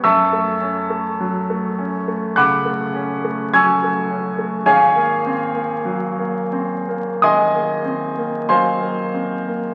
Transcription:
<<
  \new Staff \with { instrumentName = "Grand piano" } { \time 4/4 \key fis \minor \tempo 4 = 51 <e'' a'' cis''' e'''>2 <fis'' b'' d''' fis'''>4 <gis'' cis''' e''' gis'''>8 r8 | \key aes \mixolydian <aes' des'' f'' aes''>2 <ees'' aes'' c''' ees'''>4 <c'' f'' aes'' c'''>4 | }
  \new Staff \with { instrumentName = "Grand piano" } { \time 4/4 \key fis \minor fis,16 a16 cis'16 a16 fis16 a16 cis'16 a16 cis16 a16 cis'16 a16 fis16 a16 cis'16 a16 | \key aes \mixolydian aes,,16 bes16 c'16 bes16 ges16 bes16 c'16 bes16 ees,16 bes16 c'16 bes16 ges16 bes16 c'16 bes16 | }
>>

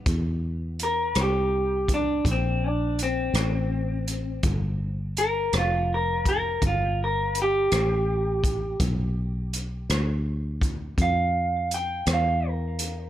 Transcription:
<<
  \new Staff \with { instrumentName = "Clean electric guitar" } { \time 12/8 \key c \major \tempo 4. = 55 r4 bes'8 g'4 d'8 c'8 d'8 c'2 | r4 bes'8 f'8 bes'8 bes'8 f'8 bes'8 g'2 | r2. f''4 g''8 f''8 bes'4 | }
  \new Staff \with { instrumentName = "Fingered electric bass" } { \clef bass \time 12/8 \key c \major e,4. c,4. bes,,4. a,,4. | g,,4. f,,4. g,,4. a,,4. | b,,4. d,4. f,4. e,4. | }
  \new DrumStaff \with { instrumentName = "Drums" } \drummode { \time 12/8 <hh bd>4 hh8 <hh ss>4 <hh bd>8 <hh bd>4 hh8 <hh ss>4 hh8 | <hh bd>4 hh8 <hh ss>4 <hh bd>8 <hh bd>4 hh8 <hh ss>4 <hh bd>8 | <hh bd>4 hh8 <hh ss>4 <hh bd>8 <hh bd>4 hh8 <hh ss>4 hh8 | }
>>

